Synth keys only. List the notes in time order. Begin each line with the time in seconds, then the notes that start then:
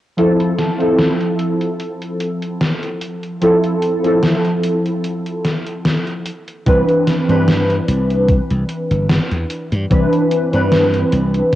0.17 F3 C4 E4 A4
0.78 F3 C4 E4 A4
3.41 F3 C4 E4 A4
4.03 F3 C4 E4 A4
6.66 E3 C4 D4 B4
7.27 E3 C4 D4 B4
9.90 E3 C4 D4 B4
10.51 E3 C4 D4 B4